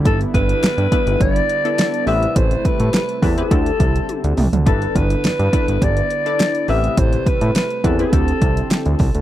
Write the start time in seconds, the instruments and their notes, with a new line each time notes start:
Already playing: analog synth pad D3 G3 E4
0.04 analog synth bass G1, analog synth pad B3, analog polysynth B3 D4 E4 A4, alto saxophone A4, kick, closed hi-hat
0.21 closed hi-hat
0.34 analog synth bass G1, alto saxophone B4, kick, closed hi-hat
0.49 closed hi-hat
0.63 analog synth bass G2, snare, closed hi-hat
0.78 analog synth bass G2, closed hi-hat
0.92 analog polysynth B3 D4 E4 B4, kick, closed hi-hat
1.07 analog synth bass G1, closed hi-hat
1.20 analog synth bass G1, alto saxophone D5, kick, closed hi-hat
1.36 closed hi-hat
1.49 closed hi-hat
1.65 analog polysynth B3 D4 E4 A4, closed hi-hat
1.78 snare, closed hi-hat
1.94 closed hi-hat
2.07 analog synth bass A1, analog synth pad C3 A3, analog polysynth C4 E4 G4 B4, alto saxophone E5, open hi-hat
2.23 closed hi-hat
2.36 analog synth bass A1, alto saxophone C5, kick, closed hi-hat
2.51 closed hi-hat
2.65 alto saxophone B4, kick, closed hi-hat
2.80 analog synth bass A2, closed hi-hat
2.93 alto saxophone B4, snare, closed hi-hat
3.09 closed hi-hat
3.22 analog synth bass E2, analog polysynth C4 E4 G4 B4, alto saxophone A4, kick, open hi-hat
3.38 analog polysynth C4 E4 G4 B4, alto saxophone A4, closed hi-hat
3.51 analog synth bass D2, analog synth pad D3 C4, analog polysynth C4 E4 G4 A4, kick, closed hi-hat
3.66 closed hi-hat
3.80 analog synth bass C2, kick, closed hi-hat
3.96 closed hi-hat
4.09 closed hi-hat, high tom
4.24 analog synth bass D2, closed hi-hat
4.37 analog synth bass C2, mid tom, open hi-hat
4.53 analog synth bass D2, closed hi-hat, floor tom
4.66 analog synth bass G1, analog synth pad B3, analog polysynth D4 E4 A4 B4, alto saxophone A4, kick, closed hi-hat
4.82 closed hi-hat
4.95 analog synth bass G1, alto saxophone B4, kick, closed hi-hat
5.10 closed hi-hat
5.24 analog synth bass G2, snare, closed hi-hat
5.39 analog synth bass G2, closed hi-hat
5.53 analog polysynth D4 E4 A4 B4, kick, closed hi-hat
5.68 analog synth bass G1, closed hi-hat
5.82 analog synth bass G1, alto saxophone D5, kick, closed hi-hat
5.97 closed hi-hat
6.10 closed hi-hat
6.26 analog polysynth D4 E4 A4 D5, closed hi-hat
6.39 snare, closed hi-hat
6.55 closed hi-hat
6.68 analog synth bass A1, analog synth pad C3 A3, analog polysynth C4 E4 G4 B4, alto saxophone E5, open hi-hat
6.84 closed hi-hat
6.97 analog synth bass A1, alto saxophone C5, kick, closed hi-hat
7.13 closed hi-hat
7.26 alto saxophone B4, kick, closed hi-hat
7.41 analog synth bass A2, closed hi-hat
7.55 alto saxophone B4, snare, closed hi-hat
7.70 closed hi-hat
7.84 analog synth bass E2, analog polysynth C4 E4 G4 B4, alto saxophone A4, kick, closed hi-hat
7.99 analog polysynth C4 E4 G4 B4, alto saxophone A4, closed hi-hat
8.13 analog synth bass D2, analog synth pad D3 C4, analog polysynth C4 E4 G4 A4, kick, closed hi-hat
8.28 closed hi-hat
8.41 analog synth bass C2, kick, closed hi-hat
8.57 closed hi-hat
8.70 snare, closed hi-hat
8.86 analog synth bass D2, closed hi-hat
8.99 analog synth bass C2, kick, open hi-hat
9.15 analog synth bass D2, closed hi-hat